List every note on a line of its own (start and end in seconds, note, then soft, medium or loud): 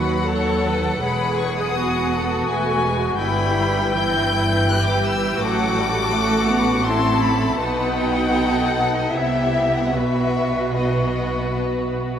0.00 0.99 D#2 medium
0.00 1.00 D#2 medium
0.00 1.00 F#3 medium
0.00 0.27 F#4 soft
0.00 0.26 B4 soft
0.00 2.44 F#5 medium
0.00 0.29 B5 medium
0.28 1.03 A4 soft
0.28 0.67 C#5 medium
0.28 1.03 A5 medium
0.67 1.03 B4 medium
1.01 2.46 E1 medium
1.01 2.46 E2 medium
1.01 1.74 G#3 soft
1.01 1.74 G#4 medium
1.01 1.75 B4 medium
1.01 1.39 B5 medium
1.38 1.57 C#6 medium
1.57 2.46 D#6 medium
1.75 2.46 B3 medium
1.75 3.19 F#4 medium
1.75 2.12 G#4 medium
2.12 2.48 A4 medium
2.47 3.18 E1 medium
2.47 3.18 E2 soft
2.47 2.83 A3 medium
2.47 3.17 B4 medium
2.47 3.19 G#5 medium
2.85 3.20 G#3 medium
3.18 5.38 G1 medium
3.18 5.38 G2 medium
3.18 3.96 G3 medium
3.18 3.93 E4 medium
3.18 4.66 B4 medium
3.18 5.37 G5 medium
3.18 3.91 B5 medium
3.95 4.31 E3 medium
3.95 4.68 E4 medium
3.95 4.69 G6 medium
4.33 5.39 E3 medium
4.69 5.42 G4 medium
4.69 5.40 B4 medium
4.69 4.88 F#6 medium
4.86 5.05 D6 medium
5.04 5.40 E6 medium
5.40 7.57 A1 medium
5.40 7.57 A2 medium
5.40 5.76 F#3 medium
5.40 6.83 F#4 medium
5.40 6.84 A4 medium
5.40 6.11 F#5 medium
5.40 6.86 D6 medium
5.76 6.12 G3 medium
6.12 6.49 A3 medium
6.12 6.85 F#5 medium
6.47 6.85 B3 medium
6.85 7.60 C4 medium
6.85 7.60 E4 medium
6.85 7.59 A4 medium
6.85 7.61 A5 medium
6.85 7.23 C6 medium
7.23 7.61 B5 medium
7.60 9.10 B1 medium
7.60 9.09 B2 medium
7.60 9.10 B3 medium
7.60 9.10 D#4 medium
7.60 8.32 B4 medium
7.60 9.10 F#5 medium
7.60 7.98 A5 medium
7.97 8.73 G5 medium
8.36 9.14 A4 medium
8.74 8.94 F#5 medium
8.95 9.14 D#5 medium
9.12 9.93 C2 medium
9.12 9.94 C3 medium
9.12 9.93 B3 soft
9.12 9.95 E4 soft
9.12 9.94 G4 medium
9.12 9.94 E5 medium
9.12 9.74 E5 medium
9.75 9.95 F#5 medium
9.94 12.19 B1 medium
9.94 12.19 B2 medium
9.94 10.76 B3 soft
9.94 10.76 F#4 soft
9.94 10.77 B4 medium
9.94 10.79 E5 medium
10.77 12.19 B3 soft
10.77 12.19 F#4 medium
10.77 12.19 B4 medium
10.77 11.63 D#5 medium